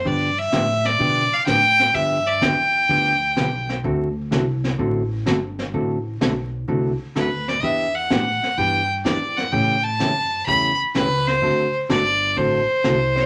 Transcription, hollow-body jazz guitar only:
X:1
M:4/4
L:1/8
Q:"Swing" 1/4=127
K:Dmix
V:1 name="Hollow-body jazz guitar"
[D,=F,B,DG] z [D,F,B,DG] z [D,F,B,DG] z [D,F,B,DG] z | [D,=F,B,DG] z [D,F,B,DG] z [D,F,B,DG] z [D,F,B,DG] z | [D,A,CFA] z [D,A,CFA] z [D,A,CFA] z [D,A,CFA] z | [D,A,CFA] z [D,A,CFA] z [D,A,CFA] z [D,A,CFA] z |
[E,B,DG] z [E,B,DG] z [E,B,DG] z [E,B,DG] z | [^C,E,A,^CG] z [C,E,A,CG] z [C,E,A,CG] z [C,E,A,CG] z | [D,A,CFA] z [D,A,CFA] z [D,A,CFA] z [D,A,CFA] z |]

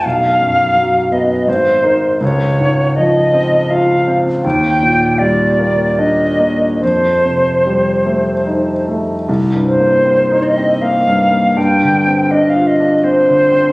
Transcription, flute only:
X:1
M:3/4
L:1/16
Q:1/4=80
K:Fmix
V:1 name="Flute"
f6 e2 c4 | _d4 e4 f3 z | g4 d4 e4 | c8- c2 z2 |
z2 c4 e2 f4 | g4 e f e2 c4 |]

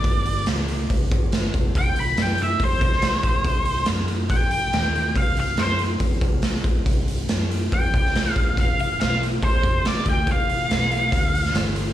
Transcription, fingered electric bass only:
X:1
M:4/4
L:1/8
Q:1/4=141
K:C
V:1 name="Fingered electric bass" clef=bass
G,,,2 ^C,,2 =C,, G,,,2 F,,, | C,,2 ^F,,2 =F,, C,,2 _B,,, | C,,2 ^F,,2 _B,,,2 _E,,2 | C,,2 ^F,,2 =F,, C,,2 _B,,, |
C,,2 ^F,,2 =F,, C,,2 _B,,, | F,,,2 B,,,2 A,,, F,,,2 D,, | F,,,2 B,,,2 D,,2 G,,,2 |]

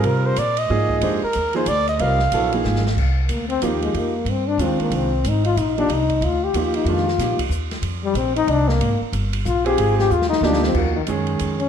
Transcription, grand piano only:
X:1
M:3/4
L:1/8
Q:"Swing" 1/4=185
K:Fphr
V:1 name="Grand piano"
[=G,CFB]2 z2 [F,B,EA]2 | [A,=D=Gc] z2 [F,B,EA] z2 | [=G,CFB] z [_G,_C_F=A] [=F,B,E_A]2 z | [K:Fdor] z4 [F,B,EG]2- |
[F,B,EG] z3 [E,A,DF]2- | [E,A,DF] z4 [F,B,EG] | z4 [F,B,EG]2 | [E,A,DF] z [F,B,EG] z3 |
z6 | z4 z [CFGA]- | [CFGA]2 z2 [F,B,EG]2 | [K:Ebm] [F,B,EG] z [E,A,DA]3 z |]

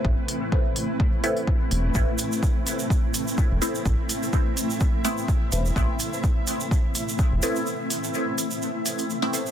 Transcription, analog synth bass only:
X:1
M:4/4
L:1/16
Q:"Swing 16ths" 1/4=126
K:Am
V:1 name="Analog synth bass" clef=bass
A,,, z12 z E,,,2 | A,,, z12 E,,, z2 | A,,, z12 z E,,,2 | A,,, z12 E,,, z2 |
z16 |]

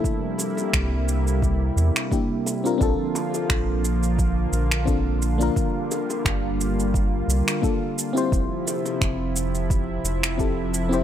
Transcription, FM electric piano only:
X:1
M:4/4
L:1/16
Q:"Swing 16ths" 1/4=87
K:Bblyd
V:1 name="FM electric piano"
[B,DEA]12 [B,DEG]3 [CDFB] | [CDFA]6 z6 [CDFA]3 [B,DFB]- | [B,DFB]12 [B,DFA]3 [CEGc]- | [CEGc]12 [CEGA]3 [CEGc] |]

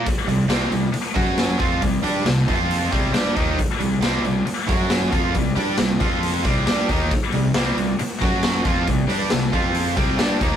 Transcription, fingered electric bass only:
X:1
M:4/4
L:1/8
Q:1/4=136
K:F
V:1 name="Fingered electric bass" clef=bass
z C,, C,, C,, z ^F,,2 =F,, | C,, G,, C,, F,,2 C,, G,, _E,, | z C,, C,, C,, z ^F,,2 =F,, | C,, G,, C,, F,,2 C,, G,, _E,, |
z C,, C,, C,, z ^F,,2 =F,, | C,, G,, C,, F,,2 C,, G,, _E,, |]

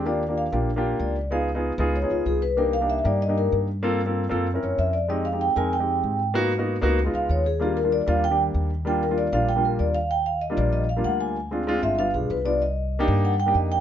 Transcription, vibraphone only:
X:1
M:4/4
L:1/8
Q:1/4=191
K:Eb
V:1 name="Vibraphone"
d2 f z3 d2 | f z3 _d F A _c | B f _f d e B z2 | z4 z _d _f =d |
e f g a g4 | z4 z f _d A | G B d f g z3 | g B d f g B d f |
g f e d e f _g a- | a z2 _f =f A =B d | e3 z _g =g e g |]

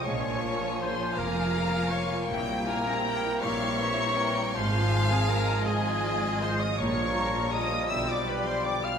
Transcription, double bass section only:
X:1
M:6/8
L:1/8
Q:3/8=53
K:Fm
V:1 name="Double bass section" clef=bass
B,,,3 F,,,3 | B,,,3 B,,,3 | A,,,3 A,,,3 | B,,,3 =B,,,3 |]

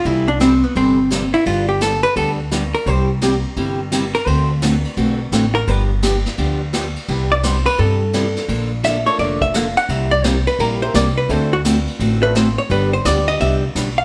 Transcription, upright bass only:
X:1
M:4/4
L:1/8
Q:"Swing" 1/4=171
K:C
V:1 name="Upright bass" clef=bass
C,,4 G,,,4 | G,,,4 D,,4 | C,,4 G,,,4 | D,,4 B,,,2 A,,,2 |
G,,,4 D,,4 | C,,4 G,,4 | _B,,,4 F,,,4 | C,,4 _B,,,2 C,,2 |
D,,4 A,,,4 | G,,,2 D,,2 C,,2 B,,,2 |]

